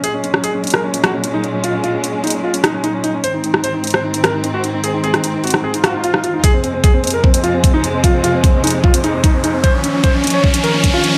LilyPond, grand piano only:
\new Staff \with { instrumentName = "Grand piano" } { \time 4/4 \key f \phrygian \tempo 4 = 150 aes'16 des'16 des'16 des'16 aes'16 des'16 des'16 bes'16 des'16 des'16 ges'16 des'16 des'16 ees'16 des'16 des'16 | f'16 des'16 f'16 des'16 des'16 des'16 ees'16 des'16 f'16 des'16 ees'16 des'16 ees'16 des'16 ees'16 des'16 | c''16 ees'16 ees'16 ees'16 c''16 ees'16 ees'16 c''16 ees'16 ees'16 bes'16 ees'16 ees'16 ges'16 ees'16 ees'16 | aes'16 ees'16 aes'16 ees'16 ees'16 ees'16 ges'16 ees'16 aes'16 ees'16 ges'16 ees'16 f'16 ees'16 f'16 ees'16 |
aes'16 c'16 c'16 c'16 aes'16 c'16 c'16 bes'16 c'16 c'16 f'16 c'16 c'16 ees'16 c'16 c'16 | f'16 c'16 f'16 c'16 c'16 c'16 ees'16 c'16 f'16 c'16 ees'16 c'16 ees'16 c'16 ees'16 c'16 | c''16 des'16 des'16 des'16 c''16 des'16 des'16 des''16 des'16 des'16 bes'16 des'16 des'16 f'16 des'16 des'16 | }